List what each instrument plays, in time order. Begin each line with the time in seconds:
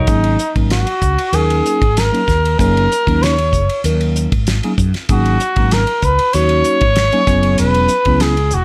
Already playing: trumpet D#4
0.07 fretless electric bass G#1, tine electric piano F#3 A#3 C#4 D#4 G#4, kick, hi-hat pedal, ride
0.24 ride
0.39 hi-hat pedal
0.55 fretless electric bass G#1, tine electric piano F#3 A#3 C#4 D#4 A#4, kick, ride
0.70 trumpet F#4, snare, hi-hat pedal, ride
0.87 ride
1.01 fretless electric bass C#2, tine electric piano D#4 G#4, kick, hi-hat pedal
1.18 muted fretless electric bass stroke, ride
1.32 fretless electric bass D#2, tine electric piano F#3 A#3 C#4 D#4 A#4, trumpet G#4, hi-hat pedal, ride
1.50 ride
1.66 hi-hat pedal
1.81 fretless electric bass G#1, kick, ride
1.97 trumpet A#4, snare, hi-hat pedal, ride
2.12 tine electric piano F#3 A#3 C#4 D#4 A#4, ride
2.27 fretless electric bass D#2, tine electric piano D#4, kick, snare, hi-hat pedal
2.45 ride
2.59 fretless electric bass F#1, tine electric piano F#3 A#3 C#4 D#4 G#4, trumpet A#4, kick, hi-hat pedal, ride
2.77 ride
2.92 hi-hat pedal
3.07 fretless electric bass D#2, tine electric piano F#3 A#3 C#4 D#4 A#4, kick, ride
3.23 trumpet C#5, snare, hi-hat pedal, ride
3.38 ride
3.53 fretless electric bass F#1, tine electric piano D#4 G#4, kick, hi-hat pedal
3.69 ride
3.84 fretless electric bass D#2, tine electric piano F#3 A#3 C#4 D#4 A#4, hi-hat pedal, ride
4.01 ride
4.16 hi-hat pedal
4.32 fretless electric bass G#1, kick, ride
4.47 snare, hi-hat pedal, ride
4.63 tine electric piano F#3 A#3 C#4 D#4 G#4, ride
4.78 fretless electric bass F#2, kick, hi-hat pedal
4.94 muted fretless electric bass stroke, snare, ride
5.09 fretless electric bass G#1, tine electric piano F#3 A#3 C#4 D#4 G#4, trumpet F#4, kick, hi-hat pedal, ride
5.25 ride
5.40 hi-hat pedal
5.56 fretless electric bass G#1, tine electric piano F#3 A#3 C#4 D#4 A#4, kick, ride
5.71 trumpet A#4, snare, hi-hat pedal, ride
5.87 ride
6.02 fretless electric bass C#2, tine electric piano D#4 A#4, trumpet B4, kick, hi-hat pedal
6.19 muted fretless electric bass stroke, ride
6.33 fretless electric bass D#2, tine electric piano F#3 A#3 C#4 D#4 F#4, trumpet C#5, hi-hat pedal, ride
6.49 ride
6.64 hi-hat pedal
6.81 fretless electric bass G#1, kick, ride
6.96 snare, hi-hat pedal, ride
7.12 tine electric piano F#3 A#3 C#4 D#4 G#4, ride
7.27 fretless electric bass F#1, tine electric piano F#3 B3 C#4 E4 G#4, kick, snare, hi-hat pedal
7.43 ride
7.58 fretless electric bass E1, trumpet B4, hi-hat pedal, ride
7.74 ride
7.88 hi-hat pedal
8.05 fretless electric bass C#2, tine electric piano F#3 B3 C#4 E4 G#4, kick, ride
8.20 trumpet G#4, snare, hi-hat pedal, ride
8.37 ride
8.51 fretless electric bass E1, tine electric piano E4 F#4, trumpet F#4, hi-hat pedal